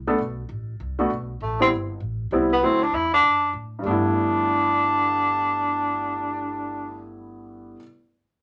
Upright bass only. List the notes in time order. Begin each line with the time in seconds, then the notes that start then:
Already playing: C2
0.19 B1
0.49 A1
0.80 C2
1.10 B1
1.41 A1
1.71 G1
2.00 A1
2.31 C2
2.62 D2
2.92 E2
3.23 F#2
3.53 A2
3.84 G1